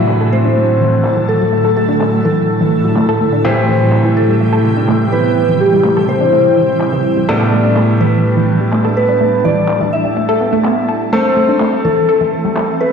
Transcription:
0.00 3.41 A2 medium
0.00 3.42 A2 medium
0.00 3.41 D3 medium
0.00 3.42 E3 medium
0.00 3.41 F#3 medium
0.00 3.41 A3 medium
0.00 3.42 D4 medium
0.00 7.25 E4 medium
0.00 3.42 F#4 medium
0.00 3.41 A4 medium
0.00 0.23 E5 loud
0.00 0.23 E5 medium
0.09 0.15 A3 medium
0.09 clap loud
0.21 0.27 A4 loud
0.33 0.39 A3 medium
0.33 1.19 C5 medium
0.33 1.19 C5 loud
0.45 0.51 D4 medium
0.57 0.66 A3 medium
0.81 0.87 E3 medium
0.81 shaker medium
0.93 shaker soft
1.05 clap loud
1.17 1.23 E3 medium
1.29 1.72 A4 medium
1.41 1.50 F#3 medium
1.53 1.59 A3 medium
1.53 shaker soft
1.65 1.71 A4 loud
1.77 1.83 A3 medium
1.77 2.20 A4 medium
1.89 1.95 D4 medium
2.01 2.10 A3 medium
2.01 clap loud
2.25 2.31 E3 medium
2.25 3.46 A4 loud
2.25 3.45 A4 medium
2.49 shaker soft
2.61 2.67 E3 medium
2.73 shaker medium
2.85 2.94 F#3 medium
2.97 3.03 A3 medium
2.97 clap loud
3.09 3.15 A4 loud
3.21 3.27 A3 medium
3.21 shaker medium
3.33 3.39 D4 medium
3.33 shaker soft
3.45 7.26 A2 medium
3.45 7.25 C3 medium
3.45 7.25 E3 medium
3.45 7.26 E3 medium
3.45 11.09 G3 medium
3.45 3.54 A3 medium
3.45 7.26 C4 medium
3.45 7.25 G4 medium
3.45 7.26 G4 medium
3.45 4.07 C5 loud
3.45 4.07 C5 medium
3.69 3.75 E3 medium
3.81 shaker soft
3.93 clap loud
4.05 4.11 E3 medium
4.17 5.03 A4 loud
4.17 5.03 A4 medium
4.17 shaker medium
4.29 4.38 G3 medium
4.41 4.47 A3 medium
4.53 4.59 A4 loud
4.65 4.71 A3 medium
4.77 4.83 D4 medium
4.89 4.98 A3 medium
4.89 clap loud
5.12 5.19 E3 medium
5.12 5.56 B4 medium
5.49 5.55 E3 medium
5.60 6.09 G4 medium
5.60 6.10 G4 medium
5.73 5.82 G3 medium
5.85 5.91 A3 medium
5.85 clap loud
5.97 6.03 A4 loud
6.09 6.15 A3 medium
6.09 7.19 C5 medium
6.09 7.19 C5 loud
6.21 6.27 D4 medium
6.33 6.42 A3 medium
6.57 6.63 E3 medium
6.57 shaker medium
6.69 shaker soft
6.81 clap loud
6.81 shaker soft
6.93 6.99 E3 medium
7.05 shaker medium
7.17 7.26 G3 medium
7.28 11.10 A2 medium
7.28 11.10 G3 medium
7.28 12.92 A3 medium
7.28 7.35 A3 medium
7.28 11.10 B3 medium
7.28 11.09 D4 medium
7.28 12.92 A4 medium
7.28 11.10 A4 medium
7.28 7.91 D5 medium
7.28 7.91 D5 loud
7.41 7.47 A4 loud
7.53 7.59 A3 medium
7.53 shaker medium
7.65 7.71 D4 medium
7.76 7.86 A3 medium
7.76 clap loud
7.76 shaker soft
8.01 8.07 E3 medium
8.01 8.87 B4 medium
8.01 8.87 B4 loud
8.25 shaker soft
8.37 8.43 E3 medium
8.49 shaker medium
8.61 8.70 G3 medium
8.61 shaker soft
8.73 8.79 A3 medium
8.73 clap loud
8.73 shaker soft
8.85 8.91 A4 loud
8.97 9.03 A3 medium
8.97 9.45 B4 medium
8.97 9.46 B4 medium
8.97 shaker medium
9.09 9.15 D4 medium
9.21 9.30 A3 medium
9.21 shaker soft
9.45 9.51 E3 medium
9.45 9.94 D5 medium
9.45 9.93 D5 medium
9.45 shaker medium
9.57 shaker soft
9.69 clap loud
9.69 shaker soft
9.81 9.87 E3 medium
9.93 11.03 E5 medium
9.93 11.03 E5 loud
9.93 shaker medium
10.05 10.14 G3 medium
10.05 shaker soft
10.17 10.23 A3 medium
10.17 shaker soft
10.29 10.35 A4 loud
10.41 10.47 B3 medium
10.41 shaker medium
10.53 10.59 A3 loud
10.53 shaker soft
10.64 10.71 B3 medium
10.64 clap loud
10.64 shaker soft
10.89 10.92 A4 medium
10.89 shaker medium
11.01 shaker soft
11.13 12.92 E3 medium
11.13 11.19 A3 medium
11.13 12.92 A3 medium
11.13 12.92 C4 medium
11.13 12.92 A4 medium
11.13 11.75 C5 medium
11.13 11.75 C5 loud
11.37 11.43 A3 medium
11.49 11.55 D4 medium
11.49 shaker soft
11.61 11.70 A3 medium
11.61 clap loud
11.61 shaker soft
11.85 11.91 E3 medium
11.85 12.71 A4 medium
11.85 12.71 A4 loud
11.85 shaker medium
11.97 shaker soft
12.09 12.15 A4 loud
12.09 shaker soft
12.21 12.27 E3 medium
12.33 shaker medium
12.45 12.54 G3 medium
12.45 shaker soft
12.57 12.63 A3 medium
12.57 clap loud
12.57 shaker soft
12.80 12.87 A3 medium
12.80 12.92 B4 medium
12.80 shaker medium

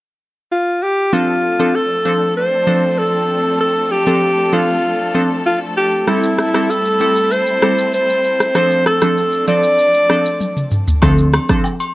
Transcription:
0.52 0.84 F4 medium
0.82 1.15 G4 medium
1.12 1.56 F3 medium
1.12 6.04 F3 medium
1.12 10.98 A3 medium
1.12 1.56 C4 medium
1.12 6.04 C4 medium
1.12 6.04 D4 medium
1.12 1.56 D4 medium
1.12 1.77 F4 medium
1.12 10.98 A4 medium
1.12 1.56 A4 loud
1.59 1.73 F3 medium
1.59 1.73 C4 medium
1.59 1.73 D4 medium
1.59 1.73 A4 medium
1.75 2.36 A4 medium
2.05 2.20 F3 medium
2.05 2.20 C4 medium
2.05 2.20 D4 medium
2.05 2.20 A4 medium
2.37 3.00 C5 medium
2.67 2.82 F3 medium
2.67 2.82 C4 medium
2.67 2.82 D4 medium
2.67 2.82 A4 medium
2.99 3.60 A4 medium
3.61 3.93 A4 loud
3.92 4.55 G4 loud
4.07 4.21 F3 medium
4.07 4.21 C4 medium
4.07 4.21 D4 medium
4.07 4.21 A4 medium
4.53 4.67 F3 medium
4.53 4.68 C4 medium
4.53 4.68 D4 medium
4.53 5.19 F4 medium
4.53 4.68 A4 medium
5.15 5.29 F3 medium
5.15 5.29 C4 medium
5.15 5.30 D4 medium
5.15 5.30 A4 medium
5.46 5.60 F4 medium
5.77 6.10 G4 medium
6.07 6.51 G3 medium
6.07 8.53 G3 medium
6.07 6.51 C4 medium
6.07 10.98 C4 medium
6.07 8.53 E4 medium
6.07 6.51 E4 medium
6.07 6.72 E4 medium
6.07 6.51 A4 loud
6.07 cross-stick medium
6.07 shaker medium
6.23 shaker medium
6.38 cross-stick medium
6.38 shaker soft
6.54 6.68 G3 medium
6.54 6.68 C4 medium
6.54 6.68 E4 medium
6.54 6.68 A4 medium
6.54 cross-stick medium
6.54 shaker medium
6.70 7.34 A4 loud
6.70 shaker medium
6.85 shaker soft
7.00 7.15 G3 medium
7.00 7.15 C4 medium
7.00 7.15 E4 medium
7.00 7.15 A4 medium
7.00 shaker medium
7.16 shaker medium
7.31 7.94 C5 loud
7.31 shaker medium
7.46 shaker soft
7.62 7.77 G3 medium
7.62 7.77 C4 medium
7.62 7.77 E4 medium
7.62 7.77 A4 medium
7.62 cross-stick medium
7.62 shaker medium
7.78 shaker medium
7.93 8.51 C5 loud
7.93 shaker medium
8.10 shaker soft
8.24 shaker medium
8.40 cross-stick medium
8.40 shaker medium
8.55 8.98 F3 medium
8.55 11.00 F3 medium
8.55 8.98 C4 medium
8.55 11.00 D4 medium
8.55 8.98 D4 medium
8.55 8.98 A4 loud
8.55 8.84 C5 loud
8.55 cross-stick medium
8.55 shaker medium
8.71 shaker medium
8.86 9.44 A4 loud
8.86 cross-stick medium
8.86 shaker soft
9.01 9.15 F3 medium
9.01 9.16 C4 medium
9.01 9.16 D4 medium
9.01 9.16 A4 medium
9.01 cross-stick medium
9.01 shaker medium
9.17 shaker medium
9.32 shaker soft
9.47 9.62 F3 medium
9.47 9.62 C4 medium
9.47 9.63 D4 medium
9.47 9.63 A4 medium
9.47 10.68 D5 loud
9.47 shaker medium
9.63 shaker medium
9.78 shaker medium
9.94 shaker soft
10.09 10.24 F3 medium
10.09 10.24 C4 medium
10.09 10.24 D4 medium
10.09 10.25 A4 medium
10.09 cross-stick medium
10.09 shaker medium
10.26 shaker medium
10.41 high tom medium
10.41 shaker medium
10.57 mid tom medium
10.57 shaker soft
10.71 mid tom medium
10.71 shaker medium
10.88 floor tom medium
10.88 shaker medium
11.02 11.38 D2 loud
11.02 11.45 F3 medium
11.02 11.46 C4 medium
11.02 11.46 D4 medium
11.02 11.46 A4 loud
11.02 kick loud
11.02 cross-stick medium
11.02 high agogo medium
11.02 shaker medium
11.18 shaker medium
11.33 cross-stick loud
11.33 high agogo medium
11.33 shaker medium
11.49 11.63 F3 medium
11.49 11.63 C4 medium
11.49 11.63 D4 medium
11.49 11.63 A4 medium
11.49 kick medium
11.49 cross-stick medium
11.49 shaker medium
11.64 low woodblock medium
11.64 shaker medium
11.80 high agogo medium
11.80 shaker medium

